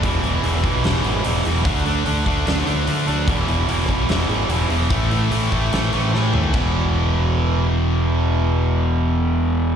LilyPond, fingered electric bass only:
\new Staff \with { instrumentName = "Fingered electric bass" } { \clef bass \time 4/4 \key a \major \tempo 4 = 147 e,,8 e,,8 e,,8 b,,8 e,,8 gis,,8 e,,8 e,,8 | d,4 d,8 d,8 d,8 d,8 d8 d,8 | e,,8 e,,8 e,,8 b,,8 e,,8 gis,,8 e,,8 e,,8 | a,,4 a,,8 a,,8 a,,8 a,,8 a,8 dis,8 |
e,,1~ | e,,1 | }